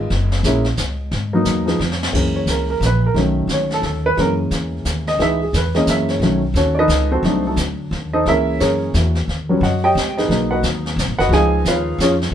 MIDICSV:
0, 0, Header, 1, 4, 480
1, 0, Start_track
1, 0, Tempo, 339751
1, 146, Time_signature, 3, 2, 24, 8
1, 17435, End_track
2, 0, Start_track
2, 0, Title_t, "Grand piano"
2, 0, Program_c, 0, 0
2, 0, Note_on_c, 0, 75, 74
2, 637, Note_on_c, 0, 56, 62
2, 649, Note_on_c, 0, 58, 54
2, 654, Note_on_c, 0, 61, 65
2, 663, Note_on_c, 0, 64, 70
2, 898, Note_off_c, 0, 56, 0
2, 904, Note_off_c, 0, 58, 0
2, 907, Note_off_c, 0, 61, 0
2, 911, Note_off_c, 0, 64, 0
2, 1882, Note_on_c, 0, 58, 61
2, 1885, Note_on_c, 0, 54, 69
2, 1900, Note_on_c, 0, 59, 55
2, 1907, Note_on_c, 0, 63, 74
2, 2332, Note_off_c, 0, 58, 0
2, 2333, Note_off_c, 0, 54, 0
2, 2340, Note_off_c, 0, 59, 0
2, 2343, Note_on_c, 0, 53, 54
2, 2344, Note_off_c, 0, 63, 0
2, 2351, Note_on_c, 0, 56, 49
2, 2364, Note_on_c, 0, 59, 51
2, 2366, Note_on_c, 0, 63, 60
2, 2493, Note_off_c, 0, 75, 0
2, 2516, Note_off_c, 0, 53, 0
2, 2520, Note_off_c, 0, 56, 0
2, 2527, Note_off_c, 0, 59, 0
2, 2528, Note_off_c, 0, 63, 0
2, 3010, Note_on_c, 0, 52, 49
2, 3019, Note_on_c, 0, 56, 42
2, 3021, Note_on_c, 0, 58, 45
2, 3035, Note_on_c, 0, 61, 50
2, 3333, Note_on_c, 0, 73, 67
2, 3504, Note_off_c, 0, 73, 0
2, 3530, Note_on_c, 0, 70, 67
2, 3796, Note_off_c, 0, 70, 0
2, 3817, Note_on_c, 0, 70, 70
2, 3986, Note_off_c, 0, 70, 0
2, 4038, Note_on_c, 0, 71, 78
2, 4300, Note_off_c, 0, 71, 0
2, 4328, Note_on_c, 0, 70, 72
2, 4347, Note_off_c, 0, 52, 0
2, 4351, Note_off_c, 0, 56, 0
2, 4352, Note_off_c, 0, 58, 0
2, 4359, Note_off_c, 0, 61, 0
2, 4449, Note_on_c, 0, 51, 53
2, 4456, Note_on_c, 0, 54, 45
2, 4467, Note_on_c, 0, 57, 46
2, 4477, Note_on_c, 0, 61, 53
2, 4482, Note_off_c, 0, 70, 0
2, 4992, Note_on_c, 0, 73, 76
2, 5257, Note_off_c, 0, 73, 0
2, 5279, Note_on_c, 0, 69, 78
2, 5419, Note_off_c, 0, 69, 0
2, 5441, Note_on_c, 0, 69, 64
2, 5721, Note_off_c, 0, 69, 0
2, 5736, Note_on_c, 0, 71, 101
2, 5787, Note_off_c, 0, 51, 0
2, 5790, Note_off_c, 0, 54, 0
2, 5796, Note_off_c, 0, 57, 0
2, 5801, Note_off_c, 0, 61, 0
2, 5894, Note_on_c, 0, 52, 49
2, 5897, Note_on_c, 0, 56, 42
2, 5906, Note_off_c, 0, 71, 0
2, 5909, Note_on_c, 0, 58, 42
2, 5919, Note_on_c, 0, 61, 52
2, 5935, Note_on_c, 0, 70, 81
2, 6104, Note_off_c, 0, 70, 0
2, 7177, Note_on_c, 0, 75, 89
2, 7230, Note_off_c, 0, 52, 0
2, 7232, Note_off_c, 0, 56, 0
2, 7237, Note_off_c, 0, 58, 0
2, 7242, Note_off_c, 0, 61, 0
2, 7337, Note_on_c, 0, 52, 63
2, 7344, Note_on_c, 0, 56, 52
2, 7347, Note_off_c, 0, 75, 0
2, 7353, Note_on_c, 0, 59, 56
2, 7368, Note_on_c, 0, 63, 59
2, 7375, Note_on_c, 0, 76, 82
2, 7608, Note_off_c, 0, 52, 0
2, 7612, Note_off_c, 0, 56, 0
2, 7617, Note_off_c, 0, 59, 0
2, 7624, Note_off_c, 0, 63, 0
2, 7649, Note_off_c, 0, 76, 0
2, 7669, Note_on_c, 0, 68, 57
2, 7833, Note_off_c, 0, 68, 0
2, 7866, Note_on_c, 0, 71, 66
2, 8121, Note_on_c, 0, 52, 58
2, 8131, Note_on_c, 0, 56, 60
2, 8135, Note_off_c, 0, 71, 0
2, 8139, Note_on_c, 0, 58, 54
2, 8143, Note_on_c, 0, 75, 77
2, 8145, Note_on_c, 0, 61, 64
2, 8310, Note_off_c, 0, 75, 0
2, 8333, Note_on_c, 0, 76, 76
2, 8608, Note_off_c, 0, 76, 0
2, 8620, Note_on_c, 0, 73, 71
2, 8748, Note_off_c, 0, 52, 0
2, 8753, Note_off_c, 0, 56, 0
2, 8757, Note_off_c, 0, 58, 0
2, 8760, Note_off_c, 0, 61, 0
2, 8777, Note_on_c, 0, 51, 50
2, 8790, Note_on_c, 0, 54, 47
2, 8799, Note_on_c, 0, 57, 49
2, 8806, Note_on_c, 0, 61, 61
2, 9049, Note_off_c, 0, 51, 0
2, 9055, Note_off_c, 0, 54, 0
2, 9058, Note_off_c, 0, 73, 0
2, 9060, Note_off_c, 0, 57, 0
2, 9063, Note_off_c, 0, 61, 0
2, 9273, Note_on_c, 0, 61, 55
2, 9276, Note_on_c, 0, 69, 55
2, 9286, Note_on_c, 0, 66, 52
2, 9286, Note_on_c, 0, 73, 71
2, 9532, Note_on_c, 0, 74, 63
2, 9556, Note_off_c, 0, 74, 0
2, 9558, Note_off_c, 0, 61, 0
2, 9559, Note_off_c, 0, 69, 0
2, 9564, Note_off_c, 0, 73, 0
2, 9565, Note_off_c, 0, 66, 0
2, 9591, Note_on_c, 0, 69, 74
2, 9592, Note_on_c, 0, 75, 96
2, 9595, Note_on_c, 0, 71, 73
2, 9608, Note_on_c, 0, 63, 67
2, 10025, Note_off_c, 0, 69, 0
2, 10025, Note_off_c, 0, 75, 0
2, 10027, Note_off_c, 0, 71, 0
2, 10034, Note_off_c, 0, 63, 0
2, 10051, Note_on_c, 0, 60, 63
2, 10053, Note_on_c, 0, 69, 64
2, 10057, Note_on_c, 0, 72, 83
2, 10066, Note_on_c, 0, 66, 65
2, 10228, Note_on_c, 0, 63, 54
2, 10235, Note_on_c, 0, 54, 52
2, 10243, Note_on_c, 0, 57, 55
2, 10250, Note_on_c, 0, 62, 61
2, 10494, Note_off_c, 0, 60, 0
2, 10495, Note_off_c, 0, 69, 0
2, 10497, Note_off_c, 0, 72, 0
2, 10502, Note_off_c, 0, 66, 0
2, 10534, Note_off_c, 0, 57, 0
2, 10541, Note_off_c, 0, 63, 0
2, 10553, Note_on_c, 0, 69, 60
2, 10554, Note_on_c, 0, 66, 43
2, 10555, Note_on_c, 0, 57, 46
2, 10562, Note_on_c, 0, 63, 43
2, 10716, Note_off_c, 0, 66, 0
2, 10716, Note_off_c, 0, 69, 0
2, 10717, Note_off_c, 0, 57, 0
2, 10720, Note_off_c, 0, 63, 0
2, 11492, Note_on_c, 0, 75, 84
2, 11497, Note_on_c, 0, 63, 65
2, 11498, Note_on_c, 0, 69, 69
2, 11499, Note_on_c, 0, 72, 64
2, 11561, Note_off_c, 0, 54, 0
2, 11568, Note_off_c, 0, 62, 0
2, 11665, Note_off_c, 0, 75, 0
2, 11667, Note_off_c, 0, 63, 0
2, 11668, Note_off_c, 0, 69, 0
2, 11668, Note_off_c, 0, 72, 0
2, 11687, Note_on_c, 0, 52, 54
2, 11689, Note_on_c, 0, 70, 74
2, 11691, Note_on_c, 0, 56, 50
2, 11701, Note_on_c, 0, 73, 66
2, 11702, Note_on_c, 0, 58, 56
2, 11704, Note_on_c, 0, 76, 87
2, 11708, Note_on_c, 0, 64, 66
2, 11713, Note_on_c, 0, 61, 59
2, 12125, Note_off_c, 0, 70, 0
2, 12131, Note_off_c, 0, 73, 0
2, 12133, Note_off_c, 0, 76, 0
2, 12135, Note_off_c, 0, 64, 0
2, 12140, Note_off_c, 0, 61, 0
2, 12156, Note_on_c, 0, 68, 52
2, 12156, Note_on_c, 0, 73, 75
2, 12162, Note_on_c, 0, 61, 58
2, 12166, Note_on_c, 0, 70, 60
2, 12598, Note_off_c, 0, 68, 0
2, 12598, Note_off_c, 0, 73, 0
2, 12601, Note_off_c, 0, 61, 0
2, 12603, Note_off_c, 0, 70, 0
2, 12653, Note_off_c, 0, 58, 0
2, 12664, Note_on_c, 0, 64, 39
2, 12665, Note_on_c, 0, 70, 47
2, 12674, Note_on_c, 0, 58, 40
2, 12681, Note_on_c, 0, 66, 36
2, 12934, Note_off_c, 0, 64, 0
2, 12935, Note_off_c, 0, 70, 0
2, 12939, Note_off_c, 0, 58, 0
2, 12942, Note_off_c, 0, 66, 0
2, 13007, Note_off_c, 0, 52, 0
2, 13009, Note_off_c, 0, 56, 0
2, 13412, Note_on_c, 0, 54, 62
2, 13412, Note_on_c, 0, 55, 55
2, 13424, Note_on_c, 0, 59, 56
2, 13427, Note_on_c, 0, 61, 62
2, 13572, Note_off_c, 0, 54, 0
2, 13572, Note_off_c, 0, 55, 0
2, 13578, Note_off_c, 0, 59, 0
2, 13580, Note_off_c, 0, 61, 0
2, 13607, Note_on_c, 0, 78, 72
2, 13613, Note_on_c, 0, 73, 57
2, 13615, Note_on_c, 0, 66, 57
2, 13619, Note_on_c, 0, 75, 57
2, 13885, Note_off_c, 0, 78, 0
2, 13887, Note_off_c, 0, 73, 0
2, 13889, Note_off_c, 0, 66, 0
2, 13891, Note_off_c, 0, 75, 0
2, 13900, Note_on_c, 0, 67, 72
2, 13902, Note_on_c, 0, 79, 89
2, 13908, Note_on_c, 0, 73, 70
2, 13913, Note_on_c, 0, 75, 84
2, 14338, Note_off_c, 0, 67, 0
2, 14339, Note_off_c, 0, 79, 0
2, 14343, Note_off_c, 0, 73, 0
2, 14345, Note_off_c, 0, 75, 0
2, 14376, Note_on_c, 0, 75, 62
2, 14382, Note_on_c, 0, 68, 60
2, 14388, Note_on_c, 0, 71, 56
2, 14389, Note_on_c, 0, 63, 60
2, 14540, Note_off_c, 0, 63, 0
2, 14540, Note_on_c, 0, 54, 49
2, 14555, Note_on_c, 0, 58, 46
2, 14558, Note_on_c, 0, 59, 53
2, 14561, Note_on_c, 0, 63, 54
2, 14816, Note_off_c, 0, 75, 0
2, 14820, Note_off_c, 0, 68, 0
2, 14823, Note_off_c, 0, 71, 0
2, 14844, Note_on_c, 0, 78, 70
2, 14856, Note_on_c, 0, 71, 59
2, 14861, Note_on_c, 0, 66, 54
2, 14862, Note_on_c, 0, 75, 56
2, 15021, Note_off_c, 0, 78, 0
2, 15027, Note_off_c, 0, 71, 0
2, 15029, Note_off_c, 0, 66, 0
2, 15030, Note_off_c, 0, 75, 0
2, 15802, Note_on_c, 0, 78, 96
2, 15812, Note_on_c, 0, 71, 74
2, 15814, Note_on_c, 0, 66, 67
2, 15821, Note_on_c, 0, 75, 73
2, 15873, Note_off_c, 0, 54, 0
2, 15881, Note_off_c, 0, 58, 0
2, 15883, Note_off_c, 0, 59, 0
2, 15884, Note_off_c, 0, 63, 0
2, 15977, Note_on_c, 0, 53, 64
2, 15980, Note_off_c, 0, 78, 0
2, 15985, Note_off_c, 0, 71, 0
2, 15985, Note_on_c, 0, 56, 52
2, 15986, Note_off_c, 0, 66, 0
2, 15989, Note_off_c, 0, 75, 0
2, 15991, Note_on_c, 0, 59, 50
2, 16006, Note_on_c, 0, 63, 70
2, 16014, Note_on_c, 0, 80, 101
2, 16021, Note_on_c, 0, 68, 74
2, 16022, Note_on_c, 0, 77, 67
2, 16032, Note_on_c, 0, 75, 75
2, 16448, Note_off_c, 0, 80, 0
2, 16451, Note_off_c, 0, 68, 0
2, 16452, Note_off_c, 0, 77, 0
2, 16457, Note_off_c, 0, 75, 0
2, 16493, Note_on_c, 0, 65, 65
2, 16494, Note_on_c, 0, 71, 60
2, 16500, Note_on_c, 0, 77, 79
2, 16501, Note_on_c, 0, 73, 64
2, 16927, Note_off_c, 0, 65, 0
2, 16928, Note_off_c, 0, 71, 0
2, 16931, Note_off_c, 0, 73, 0
2, 16931, Note_off_c, 0, 77, 0
2, 16975, Note_on_c, 0, 73, 87
2, 16977, Note_on_c, 0, 68, 61
2, 16986, Note_on_c, 0, 65, 74
2, 16988, Note_on_c, 0, 61, 74
2, 17145, Note_off_c, 0, 73, 0
2, 17146, Note_off_c, 0, 68, 0
2, 17152, Note_off_c, 0, 65, 0
2, 17154, Note_off_c, 0, 61, 0
2, 17312, Note_off_c, 0, 53, 0
2, 17316, Note_off_c, 0, 56, 0
2, 17319, Note_off_c, 0, 59, 0
2, 17326, Note_off_c, 0, 63, 0
2, 17435, End_track
3, 0, Start_track
3, 0, Title_t, "Upright bass"
3, 0, Program_c, 1, 32
3, 144, Note_on_c, 1, 30, 84
3, 604, Note_off_c, 1, 30, 0
3, 613, Note_on_c, 1, 34, 73
3, 1084, Note_off_c, 1, 34, 0
3, 1098, Note_on_c, 1, 37, 80
3, 1566, Note_off_c, 1, 37, 0
3, 1576, Note_on_c, 1, 44, 75
3, 2041, Note_off_c, 1, 44, 0
3, 2050, Note_on_c, 1, 40, 76
3, 2522, Note_off_c, 1, 40, 0
3, 2534, Note_on_c, 1, 41, 85
3, 3004, Note_off_c, 1, 41, 0
3, 3011, Note_on_c, 1, 42, 73
3, 3464, Note_off_c, 1, 42, 0
3, 3473, Note_on_c, 1, 37, 70
3, 3953, Note_off_c, 1, 37, 0
3, 3963, Note_on_c, 1, 34, 80
3, 4433, Note_off_c, 1, 34, 0
3, 4441, Note_on_c, 1, 35, 73
3, 4900, Note_off_c, 1, 35, 0
3, 4908, Note_on_c, 1, 37, 72
3, 5386, Note_off_c, 1, 37, 0
3, 5394, Note_on_c, 1, 39, 76
3, 5874, Note_off_c, 1, 39, 0
3, 5897, Note_on_c, 1, 42, 83
3, 6360, Note_off_c, 1, 42, 0
3, 6368, Note_on_c, 1, 40, 84
3, 6842, Note_off_c, 1, 40, 0
3, 6852, Note_on_c, 1, 39, 74
3, 7319, Note_off_c, 1, 39, 0
3, 7327, Note_on_c, 1, 37, 76
3, 7801, Note_off_c, 1, 37, 0
3, 7814, Note_on_c, 1, 40, 71
3, 8281, Note_off_c, 1, 40, 0
3, 8290, Note_on_c, 1, 42, 72
3, 8745, Note_off_c, 1, 42, 0
3, 8753, Note_on_c, 1, 35, 79
3, 9226, Note_off_c, 1, 35, 0
3, 9235, Note_on_c, 1, 39, 80
3, 9710, Note_off_c, 1, 39, 0
3, 9718, Note_on_c, 1, 37, 85
3, 10197, Note_off_c, 1, 37, 0
3, 10210, Note_on_c, 1, 36, 85
3, 10677, Note_off_c, 1, 36, 0
3, 10685, Note_on_c, 1, 38, 84
3, 11161, Note_off_c, 1, 38, 0
3, 11176, Note_on_c, 1, 39, 81
3, 11646, Note_off_c, 1, 39, 0
3, 11665, Note_on_c, 1, 37, 78
3, 12131, Note_off_c, 1, 37, 0
3, 12158, Note_on_c, 1, 42, 78
3, 12617, Note_off_c, 1, 42, 0
3, 12628, Note_on_c, 1, 40, 82
3, 13092, Note_off_c, 1, 40, 0
3, 13106, Note_on_c, 1, 39, 74
3, 13567, Note_off_c, 1, 39, 0
3, 13575, Note_on_c, 1, 42, 86
3, 14046, Note_off_c, 1, 42, 0
3, 14060, Note_on_c, 1, 37, 92
3, 14521, Note_off_c, 1, 37, 0
3, 14529, Note_on_c, 1, 35, 81
3, 15003, Note_off_c, 1, 35, 0
3, 15015, Note_on_c, 1, 39, 77
3, 15479, Note_off_c, 1, 39, 0
3, 15488, Note_on_c, 1, 35, 87
3, 15643, Note_on_c, 1, 32, 51
3, 15665, Note_off_c, 1, 35, 0
3, 15804, Note_off_c, 1, 32, 0
3, 15812, Note_on_c, 1, 30, 71
3, 15943, Note_off_c, 1, 30, 0
3, 15951, Note_on_c, 1, 37, 90
3, 16434, Note_off_c, 1, 37, 0
3, 16455, Note_on_c, 1, 39, 75
3, 16923, Note_off_c, 1, 39, 0
3, 16931, Note_on_c, 1, 41, 90
3, 17393, Note_off_c, 1, 41, 0
3, 17435, End_track
4, 0, Start_track
4, 0, Title_t, "Drums"
4, 144, Note_on_c, 9, 25, 41
4, 144, Note_on_c, 9, 38, 42
4, 285, Note_off_c, 9, 38, 0
4, 447, Note_on_c, 9, 38, 51
4, 588, Note_off_c, 9, 38, 0
4, 619, Note_on_c, 9, 44, 57
4, 626, Note_on_c, 9, 38, 53
4, 761, Note_off_c, 9, 44, 0
4, 768, Note_off_c, 9, 38, 0
4, 910, Note_on_c, 9, 38, 37
4, 1051, Note_off_c, 9, 38, 0
4, 1091, Note_on_c, 9, 44, 61
4, 1098, Note_on_c, 9, 38, 53
4, 1232, Note_off_c, 9, 44, 0
4, 1239, Note_off_c, 9, 38, 0
4, 1572, Note_off_c, 9, 25, 0
4, 1572, Note_on_c, 9, 25, 39
4, 1572, Note_on_c, 9, 38, 41
4, 1714, Note_off_c, 9, 38, 0
4, 2049, Note_on_c, 9, 44, 57
4, 2056, Note_on_c, 9, 38, 54
4, 2190, Note_off_c, 9, 44, 0
4, 2197, Note_off_c, 9, 38, 0
4, 2365, Note_on_c, 9, 38, 38
4, 2506, Note_off_c, 9, 38, 0
4, 2548, Note_on_c, 9, 38, 45
4, 2689, Note_off_c, 9, 38, 0
4, 2707, Note_on_c, 9, 38, 52
4, 2849, Note_off_c, 9, 38, 0
4, 2866, Note_on_c, 9, 38, 85
4, 3008, Note_off_c, 9, 38, 0
4, 3022, Note_on_c, 9, 36, 64
4, 3032, Note_off_c, 9, 25, 0
4, 3032, Note_on_c, 9, 25, 44
4, 3032, Note_on_c, 9, 38, 41
4, 3032, Note_on_c, 9, 49, 65
4, 3163, Note_off_c, 9, 36, 0
4, 3173, Note_off_c, 9, 38, 0
4, 3173, Note_off_c, 9, 49, 0
4, 3488, Note_on_c, 9, 44, 58
4, 3495, Note_on_c, 9, 38, 51
4, 3630, Note_off_c, 9, 44, 0
4, 3637, Note_off_c, 9, 38, 0
4, 3982, Note_on_c, 9, 44, 47
4, 3989, Note_on_c, 9, 38, 55
4, 4124, Note_off_c, 9, 44, 0
4, 4131, Note_off_c, 9, 38, 0
4, 4461, Note_off_c, 9, 25, 0
4, 4461, Note_on_c, 9, 25, 46
4, 4461, Note_on_c, 9, 38, 41
4, 4603, Note_off_c, 9, 38, 0
4, 4927, Note_on_c, 9, 44, 40
4, 4934, Note_on_c, 9, 38, 47
4, 5069, Note_off_c, 9, 44, 0
4, 5076, Note_off_c, 9, 38, 0
4, 5233, Note_on_c, 9, 38, 38
4, 5375, Note_off_c, 9, 38, 0
4, 5408, Note_on_c, 9, 38, 39
4, 5549, Note_off_c, 9, 38, 0
4, 5898, Note_off_c, 9, 25, 0
4, 5898, Note_on_c, 9, 25, 47
4, 5898, Note_on_c, 9, 38, 41
4, 6039, Note_off_c, 9, 38, 0
4, 6372, Note_on_c, 9, 44, 43
4, 6379, Note_on_c, 9, 38, 47
4, 6514, Note_off_c, 9, 44, 0
4, 6521, Note_off_c, 9, 38, 0
4, 6852, Note_on_c, 9, 44, 59
4, 6859, Note_on_c, 9, 38, 63
4, 6993, Note_off_c, 9, 44, 0
4, 7000, Note_off_c, 9, 38, 0
4, 7164, Note_on_c, 9, 38, 38
4, 7305, Note_off_c, 9, 38, 0
4, 7342, Note_off_c, 9, 25, 0
4, 7342, Note_on_c, 9, 25, 51
4, 7342, Note_on_c, 9, 38, 45
4, 7483, Note_off_c, 9, 38, 0
4, 7822, Note_on_c, 9, 44, 49
4, 7829, Note_on_c, 9, 38, 55
4, 7964, Note_off_c, 9, 44, 0
4, 7971, Note_off_c, 9, 38, 0
4, 8114, Note_on_c, 9, 38, 36
4, 8256, Note_off_c, 9, 38, 0
4, 8292, Note_on_c, 9, 44, 54
4, 8299, Note_on_c, 9, 38, 54
4, 8434, Note_off_c, 9, 44, 0
4, 8441, Note_off_c, 9, 38, 0
4, 8596, Note_on_c, 9, 38, 39
4, 8737, Note_off_c, 9, 38, 0
4, 8781, Note_off_c, 9, 25, 0
4, 8781, Note_on_c, 9, 25, 42
4, 8781, Note_on_c, 9, 38, 42
4, 8922, Note_off_c, 9, 38, 0
4, 9257, Note_on_c, 9, 44, 46
4, 9264, Note_on_c, 9, 38, 47
4, 9399, Note_off_c, 9, 44, 0
4, 9406, Note_off_c, 9, 38, 0
4, 9734, Note_on_c, 9, 44, 65
4, 9741, Note_on_c, 9, 38, 64
4, 9875, Note_off_c, 9, 44, 0
4, 9882, Note_off_c, 9, 38, 0
4, 10229, Note_off_c, 9, 25, 0
4, 10229, Note_on_c, 9, 25, 49
4, 10229, Note_on_c, 9, 38, 44
4, 10370, Note_off_c, 9, 38, 0
4, 10693, Note_on_c, 9, 44, 54
4, 10700, Note_on_c, 9, 38, 54
4, 10834, Note_off_c, 9, 44, 0
4, 10841, Note_off_c, 9, 38, 0
4, 11193, Note_on_c, 9, 38, 43
4, 11334, Note_off_c, 9, 38, 0
4, 11672, Note_off_c, 9, 25, 0
4, 11672, Note_on_c, 9, 25, 49
4, 11672, Note_on_c, 9, 38, 42
4, 11813, Note_off_c, 9, 38, 0
4, 12153, Note_on_c, 9, 44, 53
4, 12160, Note_on_c, 9, 38, 52
4, 12294, Note_off_c, 9, 44, 0
4, 12301, Note_off_c, 9, 38, 0
4, 12630, Note_on_c, 9, 44, 57
4, 12637, Note_on_c, 9, 38, 59
4, 12772, Note_off_c, 9, 44, 0
4, 12779, Note_off_c, 9, 38, 0
4, 12929, Note_on_c, 9, 38, 43
4, 13070, Note_off_c, 9, 38, 0
4, 13123, Note_off_c, 9, 25, 0
4, 13123, Note_on_c, 9, 25, 44
4, 13123, Note_on_c, 9, 38, 42
4, 13264, Note_off_c, 9, 38, 0
4, 13609, Note_on_c, 9, 38, 36
4, 13751, Note_off_c, 9, 38, 0
4, 14083, Note_on_c, 9, 44, 54
4, 14090, Note_on_c, 9, 38, 58
4, 14224, Note_off_c, 9, 44, 0
4, 14231, Note_off_c, 9, 38, 0
4, 14383, Note_on_c, 9, 38, 42
4, 14525, Note_off_c, 9, 38, 0
4, 14559, Note_off_c, 9, 25, 0
4, 14559, Note_on_c, 9, 25, 51
4, 14559, Note_on_c, 9, 38, 45
4, 14700, Note_off_c, 9, 38, 0
4, 15022, Note_on_c, 9, 44, 58
4, 15029, Note_on_c, 9, 38, 54
4, 15163, Note_off_c, 9, 44, 0
4, 15170, Note_off_c, 9, 38, 0
4, 15338, Note_on_c, 9, 38, 39
4, 15480, Note_off_c, 9, 38, 0
4, 15521, Note_on_c, 9, 44, 57
4, 15528, Note_on_c, 9, 38, 64
4, 15662, Note_off_c, 9, 44, 0
4, 15669, Note_off_c, 9, 38, 0
4, 15821, Note_on_c, 9, 38, 40
4, 15962, Note_off_c, 9, 38, 0
4, 15994, Note_off_c, 9, 25, 0
4, 15994, Note_on_c, 9, 25, 52
4, 15994, Note_on_c, 9, 38, 45
4, 16136, Note_off_c, 9, 38, 0
4, 16463, Note_on_c, 9, 44, 60
4, 16470, Note_on_c, 9, 38, 65
4, 16604, Note_off_c, 9, 44, 0
4, 16611, Note_off_c, 9, 38, 0
4, 16954, Note_on_c, 9, 44, 52
4, 16961, Note_on_c, 9, 38, 63
4, 17095, Note_off_c, 9, 44, 0
4, 17102, Note_off_c, 9, 38, 0
4, 17256, Note_on_c, 9, 38, 45
4, 17397, Note_off_c, 9, 38, 0
4, 17435, Note_off_c, 9, 25, 0
4, 17435, End_track
0, 0, End_of_file